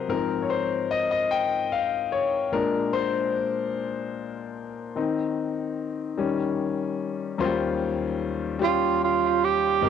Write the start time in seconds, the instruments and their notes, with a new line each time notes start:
Already playing: grand piano C3 F#3 C4 A#4 B4 C5 D#5
0.08 grand piano G#2 F3 C4 A#4
0.42 grand piano C#5
0.50 grand piano C5
0.91 grand piano D#5
1.11 grand piano D#5
1.31 grand piano G5
1.72 grand piano F5
2.12 grand piano C#5
2.52 grand piano A#2 G#3 D4 A#4
2.93 grand piano C5
4.96 grand piano D#3 C4 D#4
6.17 grand piano D#3 G3 C#4
7.38 grand piano D#2 D#3 F#3 C#4 F4 C5
7.45 grand piano G3
8.59 grand piano G3 C#4 F4 G4
8.64 tenor saxophone F4
9.04 tenor saxophone F4
9.44 tenor saxophone G4
9.81 grand piano G#1 G#2 G#3 C4 G4 A#4